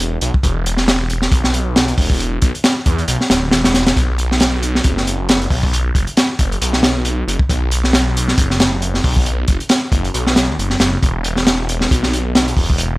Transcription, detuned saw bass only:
Already playing: E1
0.22 B1
0.43 E1
1.32 B1
1.98 E1
2.42 B1
2.86 E2
3.08 B1
3.30 D1
3.52 E1
3.97 B1
4.85 F#1
5.51 B1
5.95 F#1
6.39 F#1
6.61 B1
7.27 F#1
7.49 B1
8.38 F#1
9.04 B1
9.48 F#1
9.92 F#1
10.14 B1
10.48 D#2
10.58 F#1
10.80 F#1
11.02 E1
11.91 B1
12.57 E1

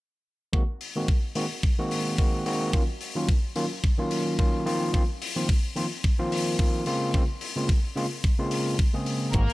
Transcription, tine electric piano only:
0.53 D#3 G#3 A#3 C4 F#4
0.96 D#3 G#3 A#3 C4 F#4
1.35 D#3 G#3 A#3 C4 F#4
1.78 D#3 G#3 A#3 C4 F#4
2.18 D#3 G#3 A#3 C4 F#4
2.45 D#3 G#3 A#3 C4 F#4
2.73 D#3 F#3 A#3 C#4 F4
3.15 D#3 F#3 A#3 C#4 F4
3.55 D#3 F#3 A#3 C#4 F4
3.98 D#3 F#3 A#3 C#4 F4
4.38 D#3 F#3 A#3 C#4 F4
4.65 D#3 F3 A#3 C4 F4
4.93 D#3 F3 A#3 C4 F4
5.36 D#3 F3 A#3 C4 F4
5.76 D#3 F3 A#3 C4 F4
6.18 D#3 F3 A#3 C4 F4
6.58 D#3 F3 A#3 C4 F4
6.86 C#3 G#3 A#3 C4 F4
7.13 C#3 G#3 A#3 C4 F4
7.56 C#3 G#3 A#3 C4 F4
7.96 C#3 G#3 A#3 C4 F4
8.39 C#3 G#3 A#3 C4 F4
8.94 C#3 G#3 A#3 C4 G#4
9.33 D#3 G#3 A#3 C4 F#4

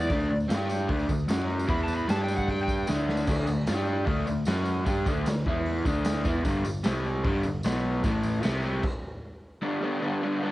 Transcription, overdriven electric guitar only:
0.10 D3 A3 D4
0.30 D3 A3
0.49 G3 D4 G4
0.88 D3 A3 D4
1.08 D3 A3
1.28 F#3 C#4 F#4
1.67 E3 B3 E4
2.07 G3 D4 G4
2.88 D3 A3 D4
3.27 D3 A3 D4
3.47 D3 A3
3.66 G3 D4 G4
4.05 D3 A3 D4
4.27 D3 A3
4.47 F#3 C#4 F#4
4.86 G3 D4 G4
5.06 D3 A3 D4
5.27 D3 A3
5.46 E3 B3 E4
5.85 D3 A3 D4
6.25 E3 B3 E4
6.44 G2 D3 G3
6.65 G2 D3
6.84 C3 G3 C4
7.24 G2 D3 G3
7.45 G2 D3
7.64 B2 F#3 B3
8.04 A2 E3 A3
8.42 C3 G3 C4
9.62 G2 D3 G3 B3 D4
9.81 G2 D3 G3 B3 D4
10.01 G2 D3 G3 B3 D4
10.22 G2 D3 G3 B3 D4
10.41 G2 D3 G3 B3 D4

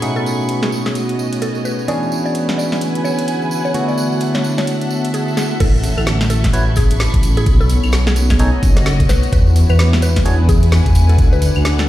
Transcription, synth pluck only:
0.16 A4
0.63 G#4
0.86 G#4
1.42 A4
1.65 B4
1.88 D5
2.26 D5
2.58 D5
3.04 C#5
3.65 C#5
3.88 D5
4.35 C#5
4.58 C#5
5.14 G#4
5.37 G#4
5.60 A4
5.97 A4
6.30 A4
6.77 G#4
7.37 G#4
7.61 A4
8.07 G#4
8.30 G#4
8.86 A4
9.09 B4
9.33 B4
9.70 B4
10.03 B4
10.49 G#4
11.09 A4
11.33 B4
11.79 A4

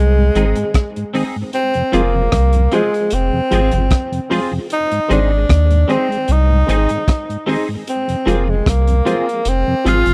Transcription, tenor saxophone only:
Already playing: G#3
1.54 C4
1.94 A#3
2.74 G#3
3.14 C4
4.73 D#4
5.12 D4
5.91 C4
6.32 D#4
7.89 C4
8.28 A#3
8.50 G#3
8.69 A#3
9.49 C4
9.88 F4

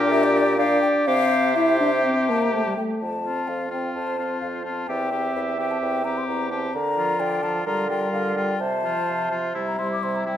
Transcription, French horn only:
Already playing: D4
0.59 D4
1.07 C4
1.56 E4
1.80 D4
2.04 C4
2.29 A#3
2.54 A3
2.67 G3
2.77 A3
3.25 C4
3.72 C4
4.19 C4
4.65 C4
4.89 C4
5.12 C4
5.58 C4
6.05 C4
6.51 C4
6.97 F3
7.43 F3
7.66 G3
7.89 G3
8.36 G3
8.84 F3
9.32 F3
9.56 G3
9.80 G3
10.27 G3

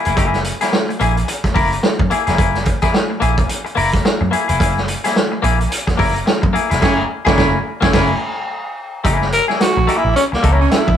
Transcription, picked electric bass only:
0.07 F1
0.17 F#1
1.01 A#1
1.56 F#1
2.00 F#2
2.28 F1
2.39 F#1
3.22 A#1
3.78 F#1
4.21 F#2
4.50 F1
4.60 F#1
5.44 A#1
5.99 F#1
6.43 F#2
6.72 F1
6.82 F#1
7.27 F#1
7.38 F#1
7.83 F#1
7.94 F#1
9.05 F#1
9.77 A#1
10.05 A#1
10.33 muted picked electric bass stroke
10.44 C#2
10.71 muted picked electric bass stroke
10.88 A#1

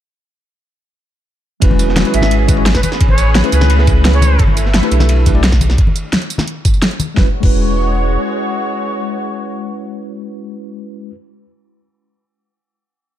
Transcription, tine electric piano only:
1.60 G#3 C#4 E4 F#4 B4
2.04 G#3 C#4 E4 F#4 B4
2.48 G#3 C#4 E4 F#4 B4
2.56 G#3 C#4 E4 F#4 C#5
3.43 A3 C#4 E4 G#4 B4
3.77 A3 C#4 E4 G#4 B4
4.81 A3 D4 E4 G4 B4
5.26 A3 D4 E4 G4 B4
5.34 A3 D4 E4 G4 D5
7.14 G#3 C#4 E4 F#4
7.19 B4
7.40 G#3 C#4 E4 F#4
7.45 B4

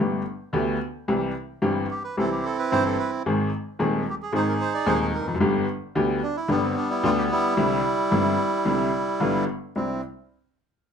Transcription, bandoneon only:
1.91 G4
2.04 B4
2.18 C4 E4 A4
2.32 G4
2.45 A4
2.59 B4
2.72 C5
2.86 A4
2.99 B4
4.10 G4
4.22 G#4
4.35 D#4 G#4 C5
4.48 A#4
4.61 C5
4.74 D5
4.87 C5
5.01 G#4
5.14 A#4
6.22 D4
6.37 E4
6.50 G3 B3 D4
6.63 C4
6.77 D4
6.91 E4
7.04 F4
7.18 G4
7.32 G3 E4
9.77 C4

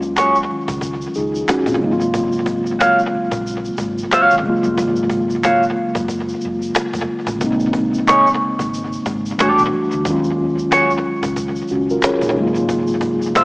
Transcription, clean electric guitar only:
0.16 F#4 G#4 C#5
2.79 F#4 C#5 F5
4.12 F#4 C#5 F5
5.44 F#4 C#5 F5
8.07 D#4 G#4 C#5
9.40 G4 A4 D5
10.71 F#4 G#4 C#5
13.35 F#4 C#5 F5

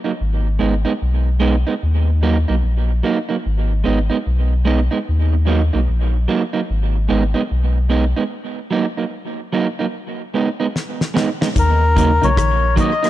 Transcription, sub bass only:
0.21 G#1
0.61 G#1
1.02 B1
1.83 D#2
2.50 B1
2.64 A#1
3.46 G#1
3.87 G#1
4.27 B1
5.09 D#2
5.74 B1
5.89 A#1
6.70 G#1
7.11 G#1
7.51 B1
11.57 D#2
12.23 B1
12.38 A#1

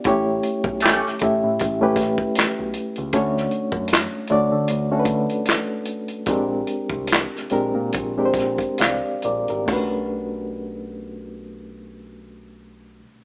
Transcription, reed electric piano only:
0.06 A3 C#4 E4 G4 C#5
1.21 A3 C#4 E4 G4 E5
1.81 A3 C#4 E4 G4 B4
3.14 A3 C#4 D4 F#4 C#5
4.30 A3 D4 F#4 C#5 D5
4.91 A3 C#4 D4 F#4 A4
4.99 B4
6.28 G#3 C4 D4 G4 A#4
7.51 G#3 C4 D4 G4 A#4
8.17 G#3 C4 D4 G4 A#4
8.26 C5
8.80 D5 F5
9.25 A#4 D5
9.50 G4 A#4
9.66 A3 C#4 D4
9.71 F#4 B4

